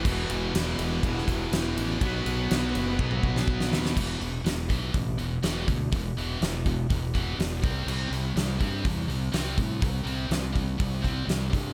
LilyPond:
<<
  \new Staff \with { instrumentName = "Distorted electric guitar" } { \clef bass \time 4/4 \key b \minor \tempo 4 = 123 <e, b, e>2 <e, b, e>2 | <b, fis b>2 <b, fis b>2 | \key e \minor r1 | r1 |
r1 | r1 | }
  \new Staff \with { instrumentName = "Distorted electric guitar" } { \clef bass \time 4/4 \key b \minor <e, b, e>2 <e, b, e>2 | <b, fis b>2 <b, fis b>2 | \key e \minor r1 | r1 |
r1 | r1 | }
  \new Staff \with { instrumentName = "Distorted electric guitar" } { \clef bass \time 4/4 \key b \minor <e, b, e>1 | <b, fis b>1 | \key e \minor <e, b, e>8 <e, b,>8 <e, b,>8 <e, b, e>8 <e, b,>8 <e, b,>8 <e, b, e>8 <e, b,>8 | <e, b,>8 <e, b, e>8 <e, b,>8 <e, b,>8 <e, b,>8 <e, b, e>8 <e, b,>8 <c g c'>8 |
<c g c'>8 <c g>8 <c g>8 <c g c'>8 <c g>8 <c g>8 <c g c'>8 <c g>8 | <c g>8 <c g c'>8 <c g>8 <c g>8 <c g>8 <c g c'>8 <c g>8 <c g>8 | }
  \new Staff \with { instrumentName = "Fingered electric bass" } { \clef bass \time 4/4 \key b \minor e,,8 e,,8 e,,8 e,,8 e,,8 e,,8 e,,8 a,,8 | b,,8 b,,8 b,,8 fis,,8 b,,8 b,,8 b,,8 dis,8 | \key e \minor e,,8 e,,8 e,,8 b,,8 a,,8 e,,8 e,,8 d,8 | e,,8 e,,8 e,,4 e,,4 e,,8 c,8 |
c,8 c,8 c,8 g,8 e,8 c,8 c,8 a,8 | c,8 c,8 c,4 c,4 c,8 g,8 | }
  \new DrumStaff \with { instrumentName = "Drums" } \drummode { \time 4/4 <cymc bd>8 cymr8 <cymr sn>8 cymr8 <bd cymr>16 sn16 <bd cymr>8 <cymr sn>8 cymr8 | <bd cymr>8 cymr8 <cymr sn>8 cymr8 bd16 tommh16 bd16 sn16 bd16 sn16 sn16 sn16 | <cymc bd>8 hho8 <hho sn>8 <hho bd>8 <hho bd>8 hho8 <hho sn>8 <hho bd>8 | <hho bd>8 hho8 <hho sn>8 <hho bd>8 <hho bd>8 <hho bd>8 <hho sn>8 <hho bd>8 |
cymc8 hho8 <hho sn>8 <hho bd>8 <hho bd>8 hho8 <hho sn>8 <hho bd>8 | <hho bd>8 hho8 <hho sn>8 <hho bd>8 <hho bd>8 <hho bd>8 <hho sn>8 <hho bd>8 | }
>>